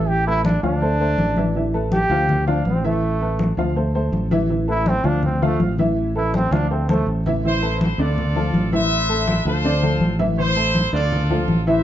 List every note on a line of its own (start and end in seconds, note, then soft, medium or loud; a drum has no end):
0.00 0.57 A1 loud
0.00 0.20 E3 loud
0.00 0.20 E4 loud
0.00 0.20 E5 loud
0.08 0.26 G4 loud
0.08 high conga soft
0.26 0.56 A3 medium
0.26 0.45 E4 loud
0.26 0.57 A4 medium
0.26 0.57 B4 medium
0.26 high conga soft
0.45 0.62 D4 medium
0.45 high conga loud
0.63 1.14 D2 medium
0.63 0.78 F3 medium
0.63 1.70 D4 loud
0.63 0.78 F4 medium
0.63 0.79 F5 medium
0.63 high conga soft
0.82 0.97 A3 medium
0.82 0.97 A4 medium
0.82 0.97 C5 medium
0.82 high conga soft
1.00 1.30 A3 medium
1.00 1.30 A4 medium
1.00 1.31 C5 medium
1.00 high conga soft
1.18 2.04 A1 loud
1.18 high conga medium
1.36 1.52 E3 loud
1.36 1.52 E4 medium
1.36 1.52 E5 medium
1.36 high conga medium
1.55 1.71 E3 medium
1.55 1.71 E4 medium
1.55 1.71 E5 medium
1.55 high conga soft
1.74 2.04 A3 medium
1.74 2.04 A4 medium
1.74 2.04 B4 medium
1.74 high conga soft
1.92 2.46 G4 loud
1.92 high conga loud
2.10 2.61 D2 loud
2.10 2.40 F3 medium
2.10 2.41 F4 medium
2.10 2.41 F5 medium
2.10 high conga soft
2.29 high conga soft
2.29 low conga medium
2.47 2.77 F3 medium
2.47 2.65 D4 medium
2.47 2.78 F4 medium
2.47 2.78 F5 loud
2.47 high conga soft
2.65 3.52 A1 loud
2.65 2.87 C4 medium
2.65 high conga medium
2.84 3.14 E3 medium
2.84 3.56 A3 loud
2.84 3.15 E4 medium
2.84 3.14 E5 loud
3.03 high conga soft
3.21 3.51 A3 medium
3.21 3.51 A4 medium
3.21 3.52 B4 medium
3.21 high conga soft
3.39 high conga loud
3.57 4.09 D2 medium
3.57 3.73 F3 medium
3.57 3.73 F4 medium
3.57 3.73 F5 medium
3.57 high conga soft
3.76 3.91 A3 medium
3.76 3.91 A4 medium
3.76 3.91 C5 medium
3.76 high conga soft
3.95 4.25 A3 medium
3.95 4.25 A4 medium
3.95 4.25 C5 medium
3.95 high conga soft
4.12 4.99 A1 loud
4.12 high conga medium
4.31 4.46 E3 loud
4.31 4.46 E4 loud
4.31 4.47 E5 loud
4.31 high conga medium
4.50 4.65 E3 medium
4.50 4.65 E4 medium
4.50 4.65 E5 medium
4.50 high conga soft
4.68 4.98 A3 medium
4.68 4.89 E4 loud
4.68 4.98 A4 medium
4.68 4.98 B4 medium
4.68 high conga soft
4.86 5.08 C4 loud
4.86 high conga loud
5.04 5.56 D2 loud
5.04 5.35 F3 medium
5.04 5.23 D4 loud
5.04 5.35 F4 medium
5.04 5.35 F5 medium
5.04 high conga soft
5.23 5.45 C4 medium
5.23 high conga soft
5.23 low conga medium
5.42 5.72 F3 loud
5.42 5.61 A3 loud
5.42 5.72 F4 medium
5.42 5.72 F5 loud
5.42 high conga soft
5.60 6.46 A1 loud
5.60 high conga loud
5.79 6.09 E3 medium
5.79 6.09 E4 medium
5.79 6.09 E5 loud
5.79 high conga medium
5.97 high conga soft
6.15 6.45 A3 medium
6.15 6.37 E4 loud
6.15 6.45 A4 medium
6.15 6.46 B4 medium
6.15 high conga soft
6.34 6.54 C4 loud
6.34 high conga loud
6.51 7.03 D2 loud
6.51 6.67 F3 medium
6.51 6.70 D4 medium
6.51 6.67 F4 medium
6.51 6.67 F5 medium
6.51 high conga medium
6.70 6.86 A3 medium
6.70 6.91 C4 medium
6.70 6.86 A4 medium
6.70 6.86 C5 medium
6.89 7.07 A3 loud
6.89 7.19 A3 medium
6.89 7.19 A4 medium
6.89 7.20 C5 medium
6.89 high conga loud
7.07 7.93 A1 medium
7.26 7.41 E3 medium
7.26 7.41 E4 loud
7.26 7.41 E5 loud
7.26 low conga medium
7.44 7.59 E3 medium
7.44 7.59 E4 medium
7.44 8.15 E4 medium
7.44 7.79 C5 medium
7.44 7.60 E5 medium
7.44 high conga soft
7.62 7.92 A3 medium
7.62 7.93 A4 medium
7.62 7.92 B4 medium
7.62 high conga soft
7.81 7.98 C5 medium
7.81 high conga loud
7.98 8.50 D2 loud
7.98 8.29 D3 medium
7.98 8.29 D4 medium
7.98 8.69 F4 medium
7.98 8.69 A4 medium
7.98 8.29 D5 medium
7.98 8.73 D5 medium
7.98 high conga soft
8.18 high conga soft
8.18 low conga medium
8.36 8.66 F3 medium
8.36 8.66 F4 medium
8.36 8.66 A4 medium
8.36 high conga soft
8.53 9.40 A1 loud
8.53 high conga medium
8.72 9.03 E3 medium
8.72 9.03 E4 loud
8.72 9.43 B4 medium
8.72 9.43 C5 medium
8.72 9.03 E5 loud
8.72 9.42 E5 loud
8.72 high conga medium
8.91 high conga soft
9.09 9.39 A3 medium
9.09 9.39 A4 medium
9.09 high conga soft
9.28 high conga loud
9.45 9.97 D2 loud
9.45 9.61 F3 medium
9.45 9.61 F4 medium
9.45 10.16 F4 medium
9.45 9.61 A4 medium
9.45 10.16 A4 medium
9.45 10.16 C5 medium
9.45 high conga soft
9.65 9.80 D3 medium
9.65 9.80 D4 medium
9.65 9.80 D5 loud
9.65 high conga soft
9.82 10.13 F3 medium
9.82 10.13 F4 medium
9.82 10.13 A4 medium
9.82 high conga soft
10.00 10.87 A1 loud
10.00 high conga medium
10.19 10.34 E3 medium
10.19 10.34 E4 loud
10.19 10.34 E5 loud
10.19 high conga loud
10.38 10.53 E3 medium
10.38 10.53 E4 medium
10.38 11.08 E4 medium
10.38 10.89 C5 loud
10.38 10.53 E5 medium
10.38 high conga soft
10.56 10.86 A3 medium
10.56 10.87 A4 medium
10.56 10.87 C5 medium
10.56 high conga soft
10.75 high conga loud
10.93 11.44 D2 loud
10.93 11.23 D3 loud
10.93 11.23 D4 medium
10.93 11.63 F4 medium
10.93 11.63 A4 medium
10.93 11.36 D5 loud
10.93 11.23 D5 medium
10.93 high conga soft
11.12 high conga soft
11.12 low conga medium
11.30 11.60 F3 medium
11.30 11.61 F4 medium
11.30 11.61 A4 medium
11.30 high conga soft
11.30 low conga medium
11.48 11.83 A1 loud
11.48 high conga medium
11.67 11.83 E3 loud
11.67 11.83 E4 loud
11.67 11.83 B4 medium
11.67 11.83 C5 medium
11.67 11.83 E5 loud